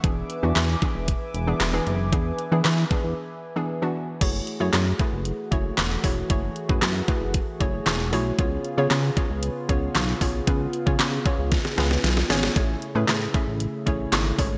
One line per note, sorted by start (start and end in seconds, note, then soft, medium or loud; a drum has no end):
0.00 0.24 E1 medium
0.00 0.36 E3 medium
0.00 0.36 B3 medium
0.00 4.17 E5 medium
0.00 kick loud
0.00 closed hi-hat medium
0.04 0.36 D4 medium
0.04 0.36 G#4 loud
0.04 4.17 B4 medium
0.04 4.17 G#5 medium
0.04 4.17 D6 medium
0.30 closed hi-hat medium
0.43 0.53 E2 loud
0.43 0.75 E3 medium
0.43 0.75 B3 medium
0.43 0.75 D4 medium
0.43 0.76 F#4 medium
0.56 0.76 E2 loud
0.56 snare medium
0.56 clap loud
0.56 closed hi-hat medium
0.82 1.36 E3 medium
0.82 1.36 B3 medium
0.82 1.36 D4 medium
0.82 1.36 G#4 loud
0.82 kick loud
0.82 closed hi-hat medium
0.95 1.15 E1 medium
1.08 kick medium
1.08 closed hi-hat loud
1.34 1.54 E1 loud
1.34 closed hi-hat medium
1.47 1.69 E3 medium
1.47 1.69 B3 medium
1.47 1.69 D4 medium
1.47 1.69 G#4 medium
1.60 1.80 E1 medium
1.60 snare loud
1.60 clap loud
1.60 closed hi-hat medium
1.73 2.06 E3 medium
1.73 2.06 B3 medium
1.73 2.06 D4 medium
1.73 2.06 G#4 loud
1.87 2.14 F#1 medium
1.87 closed hi-hat medium
2.12 2.32 E2 loud
2.12 2.45 E3 medium
2.12 2.45 B3 medium
2.12 2.45 D4 medium
2.12 2.45 G#4 loud
2.12 kick loud
2.12 closed hi-hat medium
2.39 closed hi-hat medium
2.52 2.84 E3 medium
2.52 2.62 E3 loud
2.52 2.84 B3 medium
2.52 2.84 D4 medium
2.52 2.84 G#4 loud
2.64 2.85 E3 loud
2.64 snare medium
2.64 clap loud
2.64 closed hi-hat medium
2.91 3.45 E3 medium
2.91 3.45 B3 medium
2.91 3.45 D4 medium
2.91 3.45 G#4 loud
2.91 kick loud
2.91 closed hi-hat medium
3.04 3.14 E2 loud
3.56 3.78 E3 medium
3.56 3.78 B3 medium
3.56 3.78 D4 medium
3.56 3.78 G#4 medium
3.82 4.14 E3 medium
3.82 4.15 B3 medium
3.82 4.15 D4 medium
3.82 4.15 F#4 loud
4.21 4.41 F#1 loud
4.21 8.35 E3 medium
4.21 4.54 A3 medium
4.21 8.35 A3 medium
4.21 4.54 E4 medium
4.21 4.54 F#4 medium
4.21 8.35 F#4 medium
4.21 14.58 G#4 medium
4.21 4.54 G#4 medium
4.21 4.54 C#5 loud
4.21 kick loud
4.21 closed hi-hat loud
4.21 crash loud
4.47 closed hi-hat medium
4.60 4.70 F#2 loud
4.60 4.93 A3 medium
4.60 4.93 E4 medium
4.60 4.93 F#4 medium
4.60 4.93 G#4 medium
4.60 4.93 C#5 loud
4.73 4.93 F#2 loud
4.73 snare medium
4.73 clap loud
4.73 closed hi-hat medium
4.99 5.43 A3 medium
4.99 5.43 E4 medium
4.99 5.43 F#4 medium
4.99 5.43 G#4 medium
4.99 5.43 B4 medium
4.99 kick loud
4.99 closed hi-hat medium
5.13 5.32 F#1 loud
5.25 closed hi-hat loud
5.51 5.72 F#1 loud
5.51 5.95 A3 medium
5.51 5.95 E4 medium
5.51 5.95 F#4 medium
5.51 5.95 G#4 medium
5.51 5.95 C#5 medium
5.51 kick medium
5.51 closed hi-hat medium
5.78 5.98 E1 loud
5.78 snare loud
5.78 clap loud
5.78 closed hi-hat medium
6.04 6.24 E1 loud
6.04 6.25 A3 medium
6.04 6.25 E4 medium
6.04 6.25 F#4 medium
6.04 6.26 G#4 medium
6.04 6.26 C#5 loud
6.04 kick medium
6.04 open hi-hat medium
6.30 6.50 F#1 loud
6.30 6.62 A3 medium
6.30 6.62 E4 medium
6.30 6.62 F#4 medium
6.30 6.62 G#4 medium
6.30 6.63 C#5 loud
6.30 kick loud
6.30 closed hi-hat medium
6.56 closed hi-hat medium
6.69 6.79 F#2 medium
6.69 7.01 A3 medium
6.69 7.01 E4 medium
6.69 7.02 F#4 medium
6.69 7.02 G#4 medium
6.69 7.02 B4 medium
6.69 kick loud
6.82 7.02 F#2 loud
6.82 snare medium
6.82 clap loud
6.82 closed hi-hat medium
7.08 7.51 A3 medium
7.08 7.51 E4 medium
7.08 7.51 F#4 medium
7.08 7.51 G#4 medium
7.08 7.52 B4 loud
7.08 kick loud
7.08 closed hi-hat medium
7.21 7.41 F#1 medium
7.34 kick medium
7.34 closed hi-hat loud
7.60 7.80 F#1 loud
7.60 8.03 A3 medium
7.60 8.04 E4 medium
7.60 8.04 F#4 medium
7.60 8.04 G#4 medium
7.60 8.04 C#5 loud
7.60 kick medium
7.60 closed hi-hat medium
7.86 8.14 E1 loud
7.86 snare loud
7.86 clap loud
7.86 closed hi-hat medium
8.12 8.32 B1 loud
8.12 8.34 A3 medium
8.12 8.34 E4 medium
8.12 8.34 F#4 medium
8.12 8.34 G#4 medium
8.12 8.34 C#5 loud
8.12 open hi-hat medium
8.39 8.58 C#2 loud
8.39 14.58 C#3 medium
8.39 8.71 B3 medium
8.39 12.52 B3 medium
8.39 8.71 C#4 medium
8.39 8.71 F4 medium
8.39 12.52 F4 medium
8.39 8.71 G#4 medium
8.39 8.71 C#5 loud
8.39 kick loud
8.39 closed hi-hat loud
8.65 closed hi-hat medium
8.78 8.88 C#3 loud
8.78 9.10 B3 medium
8.78 9.10 C#4 medium
8.78 9.10 F4 medium
8.78 9.10 G#4 medium
8.78 9.10 C#5 loud
8.90 9.11 C#3 loud
8.90 snare medium
8.90 clap loud
8.90 closed hi-hat medium
9.17 9.60 B3 medium
9.17 9.60 C#4 medium
9.17 9.60 F4 medium
9.17 9.60 G#4 medium
9.17 9.60 C#5 loud
9.17 kick loud
9.17 closed hi-hat medium
9.30 9.50 C#2 medium
9.43 closed hi-hat loud
9.69 9.89 C#2 loud
9.69 10.12 B3 medium
9.69 10.12 C#4 medium
9.69 10.12 F4 medium
9.69 10.12 G#4 medium
9.69 10.12 C#5 loud
9.69 kick medium
9.69 closed hi-hat medium
9.95 10.15 B1 loud
9.95 snare medium
9.95 clap loud
9.95 closed hi-hat medium
10.21 10.41 B1 medium
10.21 10.43 B3 medium
10.21 10.43 C#4 medium
10.21 10.43 F4 medium
10.21 10.43 G#4 medium
10.21 10.43 C#5 medium
10.21 kick medium
10.21 open hi-hat medium
10.47 10.67 C#2 loud
10.47 10.80 B3 medium
10.47 10.80 C#4 medium
10.47 10.80 F4 medium
10.47 10.80 G#4 medium
10.47 10.80 B4 loud
10.47 kick loud
10.47 closed hi-hat medium
10.73 closed hi-hat medium
10.86 10.97 C#3 loud
10.86 11.19 B3 medium
10.86 11.19 C#4 medium
10.86 11.19 F4 medium
10.86 11.19 G#4 medium
10.86 11.19 C#5 loud
10.86 kick loud
10.99 11.19 C#3 loud
10.99 snare medium
10.99 clap loud
10.99 closed hi-hat medium
11.25 11.69 B3 medium
11.25 11.69 C#4 medium
11.25 11.69 F4 medium
11.25 11.69 G#4 medium
11.25 11.69 C#5 loud
11.25 kick loud
11.25 closed hi-hat medium
11.39 11.59 C#2 loud
11.52 kick medium
11.52 snare medium
11.52 closed hi-hat loud
11.65 snare medium
11.78 11.98 C#2 loud
11.78 12.21 B3 medium
11.78 12.21 C#4 medium
11.78 12.21 F4 medium
11.78 12.21 G#4 medium
11.78 12.21 B4 medium
11.78 snare medium
11.78 closed hi-hat medium
11.91 snare medium
12.04 12.24 B1 medium
12.04 snare medium
12.04 closed hi-hat medium
12.17 snare medium
12.30 12.50 G#1 medium
12.30 12.51 B3 medium
12.30 12.52 C#4 medium
12.30 12.52 F4 medium
12.30 12.52 G#4 medium
12.30 12.52 C#5 loud
12.30 snare loud
12.30 open hi-hat medium
12.43 snare loud
12.56 12.76 A1 loud
12.56 12.88 A3 medium
12.56 14.58 A3 medium
12.56 12.88 C#4 medium
12.56 12.88 E4 medium
12.56 14.58 E4 medium
12.56 12.89 G#4 medium
12.56 12.89 C#5 loud
12.56 kick loud
12.56 closed hi-hat medium
12.82 closed hi-hat medium
12.95 13.05 A2 loud
12.95 13.27 A3 medium
12.95 13.28 C#4 medium
12.95 13.28 E4 medium
12.95 13.28 G#4 medium
12.95 13.28 B4 medium
13.08 13.28 A2 loud
13.08 snare medium
13.08 clap loud
13.08 closed hi-hat medium
13.34 13.77 A3 medium
13.34 13.77 C#4 medium
13.34 13.77 E4 medium
13.34 13.78 G#4 medium
13.34 13.78 E5 medium
13.34 kick loud
13.34 closed hi-hat medium
13.47 13.67 A1 loud
13.60 closed hi-hat loud
13.86 14.06 A1 medium
13.86 14.30 A3 medium
13.86 14.30 C#4 medium
13.86 14.30 E4 medium
13.86 14.30 G#4 medium
13.86 14.30 C#5 loud
13.86 kick medium
13.86 closed hi-hat medium
14.12 14.32 G#1 loud
14.12 snare loud
14.12 clap loud
14.12 closed hi-hat medium
14.38 14.58 G#1 medium
14.38 14.58 A3 medium
14.38 14.58 C#4 medium
14.38 14.58 E4 medium
14.38 14.58 G#4 medium
14.38 14.58 C#5 loud
14.38 kick medium
14.38 open hi-hat medium